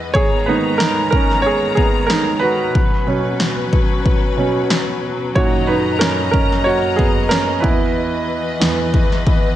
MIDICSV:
0, 0, Header, 1, 4, 480
1, 0, Start_track
1, 0, Tempo, 651466
1, 108, Time_signature, 4, 2, 24, 8
1, 7042, End_track
2, 0, Start_track
2, 0, Title_t, "Grand piano"
2, 0, Program_c, 0, 0
2, 0, Control_c, 0, 64, 127
2, 0, Note_on_c, 0, 40, 48
2, 0, Note_on_c, 0, 52, 42
2, 0, Note_on_c, 0, 59, 49
2, 75, Note_off_c, 0, 52, 0
2, 78, Note_off_c, 0, 59, 0
2, 100, Note_on_c, 0, 73, 93
2, 116, Note_on_c, 0, 68, 76
2, 118, Control_c, 0, 64, 0
2, 125, Note_off_c, 0, 40, 0
2, 264, Control_c, 0, 64, 127
2, 335, Note_off_c, 0, 68, 0
2, 339, Note_on_c, 0, 71, 76
2, 351, Note_off_c, 0, 73, 0
2, 354, Note_on_c, 0, 44, 45
2, 354, Note_on_c, 0, 51, 41
2, 360, Note_on_c, 0, 63, 62
2, 361, Note_on_c, 0, 59, 50
2, 574, Note_on_c, 0, 70, 78
2, 577, Note_off_c, 0, 63, 0
2, 590, Note_off_c, 0, 71, 0
2, 604, Note_on_c, 0, 63, 63
2, 681, Note_off_c, 0, 44, 0
2, 681, Note_off_c, 0, 51, 0
2, 684, Note_off_c, 0, 59, 0
2, 803, Note_off_c, 0, 70, 0
2, 814, Note_on_c, 0, 70, 75
2, 819, Note_off_c, 0, 63, 0
2, 847, Note_on_c, 0, 61, 59
2, 1043, Note_off_c, 0, 70, 0
2, 1046, Note_on_c, 0, 73, 85
2, 1061, Note_off_c, 0, 61, 0
2, 1077, Note_on_c, 0, 68, 67
2, 1103, Note_off_c, 0, 73, 0
2, 1130, Note_off_c, 0, 68, 0
2, 1290, Note_on_c, 0, 68, 67
2, 1320, Note_on_c, 0, 59, 50
2, 1522, Note_on_c, 0, 70, 74
2, 1537, Note_off_c, 0, 59, 0
2, 1546, Note_off_c, 0, 68, 0
2, 1553, Note_on_c, 0, 63, 63
2, 1764, Note_on_c, 0, 71, 85
2, 1773, Note_off_c, 0, 63, 0
2, 1782, Note_off_c, 0, 70, 0
2, 1788, Note_on_c, 0, 66, 59
2, 2035, Control_c, 0, 64, 0
2, 2145, Control_c, 0, 64, 127
2, 2226, Note_off_c, 0, 71, 0
2, 2238, Note_off_c, 0, 66, 0
2, 2259, Note_on_c, 0, 47, 43
2, 2259, Note_on_c, 0, 54, 43
2, 2266, Note_on_c, 0, 61, 48
2, 2593, Note_off_c, 0, 47, 0
2, 2593, Note_off_c, 0, 54, 0
2, 2597, Note_off_c, 0, 61, 0
2, 3218, Note_on_c, 0, 47, 38
2, 3223, Note_on_c, 0, 54, 35
2, 3226, Note_on_c, 0, 61, 43
2, 3438, Note_off_c, 0, 47, 0
2, 3440, Note_off_c, 0, 54, 0
2, 3442, Note_off_c, 0, 61, 0
2, 3945, Note_on_c, 0, 42, 46
2, 3945, Note_on_c, 0, 73, 83
2, 3948, Note_on_c, 0, 51, 44
2, 3953, Note_on_c, 0, 46, 52
2, 3956, Control_c, 0, 64, 0
2, 3958, Note_on_c, 0, 66, 72
2, 4095, Control_c, 0, 64, 127
2, 4176, Note_off_c, 0, 66, 0
2, 4178, Note_on_c, 0, 71, 71
2, 4188, Note_on_c, 0, 63, 57
2, 4193, Note_off_c, 0, 73, 0
2, 4406, Note_off_c, 0, 71, 0
2, 4411, Note_off_c, 0, 63, 0
2, 4413, Note_on_c, 0, 70, 75
2, 4423, Note_on_c, 0, 61, 60
2, 4637, Note_off_c, 0, 42, 0
2, 4638, Note_off_c, 0, 51, 0
2, 4640, Note_off_c, 0, 70, 0
2, 4641, Note_off_c, 0, 46, 0
2, 4648, Note_off_c, 0, 61, 0
2, 4651, Note_on_c, 0, 70, 74
2, 4665, Note_on_c, 0, 61, 62
2, 4882, Note_off_c, 0, 70, 0
2, 4889, Note_off_c, 0, 61, 0
2, 4893, Note_on_c, 0, 73, 80
2, 4908, Note_on_c, 0, 66, 67
2, 4949, Note_off_c, 0, 73, 0
2, 4962, Note_off_c, 0, 66, 0
2, 5130, Note_on_c, 0, 68, 64
2, 5146, Note_on_c, 0, 59, 55
2, 5361, Note_off_c, 0, 68, 0
2, 5370, Note_off_c, 0, 59, 0
2, 5371, Note_on_c, 0, 70, 77
2, 5386, Note_on_c, 0, 61, 58
2, 5601, Note_on_c, 0, 71, 68
2, 5610, Note_off_c, 0, 61, 0
2, 5613, Note_on_c, 0, 40, 47
2, 5613, Note_on_c, 0, 52, 45
2, 5619, Note_on_c, 0, 64, 60
2, 5620, Note_on_c, 0, 59, 50
2, 5627, Note_off_c, 0, 70, 0
2, 5638, Control_c, 0, 64, 0
2, 5759, Control_c, 0, 64, 127
2, 6065, Note_off_c, 0, 71, 0
2, 6074, Note_off_c, 0, 64, 0
2, 6324, Note_off_c, 0, 40, 0
2, 6330, Note_off_c, 0, 52, 0
2, 6332, Note_off_c, 0, 59, 0
2, 6335, Note_on_c, 0, 40, 41
2, 6341, Note_on_c, 0, 52, 39
2, 6343, Note_on_c, 0, 59, 45
2, 6557, Note_off_c, 0, 40, 0
2, 6560, Note_off_c, 0, 52, 0
2, 6561, Note_off_c, 0, 59, 0
2, 7042, End_track
3, 0, Start_track
3, 0, Title_t, "String section"
3, 0, Program_c, 1, 48
3, 0, Note_on_c, 1, 40, 56
3, 0, Note_on_c, 1, 52, 51
3, 0, Note_on_c, 1, 71, 62
3, 0, Note_on_c, 1, 75, 59
3, 78, Note_off_c, 1, 75, 0
3, 80, Note_off_c, 1, 40, 0
3, 82, Note_off_c, 1, 52, 0
3, 82, Note_off_c, 1, 71, 0
3, 100, Note_on_c, 1, 82, 74
3, 104, Note_on_c, 1, 59, 60
3, 105, Note_on_c, 1, 44, 68
3, 106, Note_on_c, 1, 51, 58
3, 2004, Note_off_c, 1, 82, 0
3, 2006, Note_off_c, 1, 44, 0
3, 2006, Note_off_c, 1, 59, 0
3, 2007, Note_off_c, 1, 51, 0
3, 2032, Note_on_c, 1, 61, 58
3, 2035, Note_on_c, 1, 47, 61
3, 2038, Note_on_c, 1, 54, 62
3, 2039, Note_on_c, 1, 71, 72
3, 3930, Note_off_c, 1, 61, 0
3, 3932, Note_off_c, 1, 47, 0
3, 3934, Note_off_c, 1, 71, 0
3, 3950, Note_on_c, 1, 75, 59
3, 3952, Note_on_c, 1, 42, 62
3, 3952, Note_on_c, 1, 82, 72
3, 5604, Note_off_c, 1, 54, 0
3, 5613, Note_off_c, 1, 42, 0
3, 5613, Note_off_c, 1, 82, 0
3, 5617, Note_on_c, 1, 52, 53
3, 5620, Note_on_c, 1, 40, 63
3, 5620, Note_on_c, 1, 71, 69
3, 7042, Note_off_c, 1, 40, 0
3, 7042, Note_off_c, 1, 52, 0
3, 7042, Note_off_c, 1, 71, 0
3, 7042, Note_off_c, 1, 75, 0
3, 7042, End_track
4, 0, Start_track
4, 0, Title_t, "Drums"
4, 110, Note_on_c, 9, 36, 81
4, 183, Note_off_c, 9, 36, 0
4, 590, Note_on_c, 9, 38, 89
4, 664, Note_off_c, 9, 38, 0
4, 829, Note_on_c, 9, 36, 80
4, 903, Note_off_c, 9, 36, 0
4, 968, Note_on_c, 9, 38, 24
4, 1041, Note_off_c, 9, 38, 0
4, 1306, Note_on_c, 9, 36, 66
4, 1380, Note_off_c, 9, 36, 0
4, 1546, Note_on_c, 9, 38, 90
4, 1619, Note_off_c, 9, 38, 0
4, 2027, Note_on_c, 9, 36, 84
4, 2101, Note_off_c, 9, 36, 0
4, 2504, Note_on_c, 9, 38, 89
4, 2578, Note_off_c, 9, 38, 0
4, 2746, Note_on_c, 9, 36, 78
4, 2820, Note_off_c, 9, 36, 0
4, 2988, Note_on_c, 9, 36, 72
4, 3062, Note_off_c, 9, 36, 0
4, 3466, Note_on_c, 9, 38, 85
4, 3539, Note_off_c, 9, 38, 0
4, 3947, Note_on_c, 9, 36, 83
4, 4021, Note_off_c, 9, 36, 0
4, 4428, Note_on_c, 9, 38, 89
4, 4502, Note_off_c, 9, 38, 0
4, 4669, Note_on_c, 9, 36, 80
4, 4742, Note_off_c, 9, 36, 0
4, 4805, Note_on_c, 9, 38, 26
4, 4879, Note_off_c, 9, 38, 0
4, 5149, Note_on_c, 9, 36, 69
4, 5222, Note_off_c, 9, 36, 0
4, 5387, Note_on_c, 9, 38, 96
4, 5460, Note_off_c, 9, 38, 0
4, 5628, Note_on_c, 9, 36, 79
4, 5702, Note_off_c, 9, 36, 0
4, 6348, Note_on_c, 9, 38, 93
4, 6421, Note_off_c, 9, 38, 0
4, 6586, Note_on_c, 9, 36, 79
4, 6659, Note_off_c, 9, 36, 0
4, 6720, Note_on_c, 9, 38, 24
4, 6794, Note_off_c, 9, 38, 0
4, 6827, Note_on_c, 9, 36, 79
4, 6901, Note_off_c, 9, 36, 0
4, 7042, End_track
0, 0, End_of_file